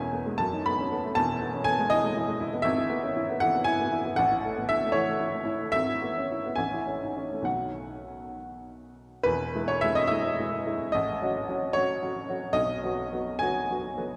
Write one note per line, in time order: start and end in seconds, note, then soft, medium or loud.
0.00 0.35 E1 medium
0.00 0.36 E2 medium
0.00 0.13 B3 medium
0.00 0.12 C#4 medium
0.00 0.40 E4 medium
0.00 0.37 G#5 loud
0.13 0.33 B3 medium
0.26 0.38 G#3 medium
0.38 1.13 F#2 medium
0.38 0.64 A5 loud
0.53 0.72 D#4 medium
0.66 0.86 B3 medium
0.66 1.15 B5 loud
0.81 0.91 C#4 medium
0.92 1.11 B3 medium
1.04 1.15 A3 medium
1.15 2.62 E1 medium
1.15 2.62 E2 medium
1.15 1.66 A5 loud
1.28 1.48 E4 medium
1.42 1.61 B3 medium
1.54 1.66 C#4 medium
1.64 1.86 B3 medium
1.64 1.90 G#5 loud
1.79 1.99 G#3 medium
1.90 2.11 E3 medium
1.90 2.65 D#5 loud
2.04 2.23 G#3 medium
2.16 2.36 E4 medium
2.28 2.48 G#3 medium
2.40 2.60 E4 medium
2.53 2.65 B3 medium
2.62 4.13 G#1 medium
2.62 3.40 E5 loud
2.77 2.98 E4 medium
2.90 3.10 B3 medium
3.03 3.16 C#4 medium
3.16 3.36 E4 medium
3.30 3.49 B3 medium
3.40 3.62 E3 medium
3.40 3.66 F#5 loud
3.55 3.74 B3 medium
3.64 3.87 E4 medium
3.64 4.17 G#5 loud
3.80 4.00 B3 medium
3.92 4.13 E4 medium
4.05 4.18 B3 medium
4.16 5.70 A1 medium
4.16 4.69 F#5 loud
4.31 4.51 E4 medium
4.44 4.64 A3 medium
4.56 4.69 B3 medium
4.69 4.90 E4 medium
4.69 4.95 E5 loud
4.83 5.03 A3 medium
4.92 5.15 E3 medium
4.92 5.72 C#5 loud
5.07 5.28 A3 medium
5.20 5.41 E4 medium
5.32 5.54 A3 medium
5.45 5.67 E4 medium
5.61 5.74 A3 medium
5.72 6.55 G#1 medium
5.72 6.56 E5 loud
5.89 6.10 E4 medium
6.02 6.24 B3 medium
6.18 6.30 C#4 medium
6.31 6.53 E4 medium
6.46 6.59 B3 medium
6.56 7.43 A1 medium
6.56 7.44 G#5 loud
6.73 6.95 E4 medium
6.87 7.10 C#4 soft
7.03 7.16 D#4 soft
7.17 7.40 C#4 medium
7.31 7.46 A3 soft
7.42 9.18 B1 medium
7.42 9.19 D#3 soft
7.42 9.19 F#3 soft
7.42 8.35 F#5 medium
7.46 9.20 F#4 soft
9.23 9.53 E1 medium
9.23 9.53 E2 medium
9.23 9.67 B4 loud
9.55 9.80 G#3 medium
9.55 9.80 E4 medium
9.68 9.82 C#5 loud
9.81 10.08 G#3 medium
9.81 10.08 E4 medium
9.81 9.95 E5 loud
9.95 10.09 D#5 loud
10.07 10.35 G#3 medium
10.07 10.35 E4 medium
10.07 10.92 E5 loud
10.38 10.63 G#3 medium
10.38 10.64 E4 medium
10.66 10.91 G#3 medium
10.66 10.91 E4 medium
10.92 11.20 A1 medium
10.92 11.74 D#5 loud
11.21 11.45 F#3 soft
11.21 11.46 C#4 medium
11.21 11.46 F#4 medium
11.48 11.72 F#3 medium
11.48 11.72 C#4 medium
11.48 11.73 F#4 medium
11.73 11.99 F#3 medium
11.73 12.00 C#4 medium
11.73 12.00 F#4 medium
11.73 12.55 C#5 loud
12.02 12.26 F#3 medium
12.02 12.26 C#4 soft
12.02 12.27 F#4 medium
12.29 12.53 F#3 medium
12.29 12.53 C#4 medium
12.29 12.54 F#4 medium
12.53 12.80 B1 medium
12.53 13.39 D#5 loud
12.83 13.09 F#3 medium
12.83 13.09 B3 medium
12.83 13.09 F#4 medium
13.12 13.38 F#3 medium
13.12 13.38 B3 medium
13.12 13.38 F#4 medium
13.39 13.66 F#3 medium
13.39 13.66 B3 medium
13.39 13.67 F#4 medium
13.39 14.17 G#5 loud
13.70 13.94 F#3 medium
13.70 13.94 B3 soft
13.70 13.94 F#4 medium
13.98 14.17 F#3 medium
13.98 14.17 B3 medium
13.98 14.17 F#4 medium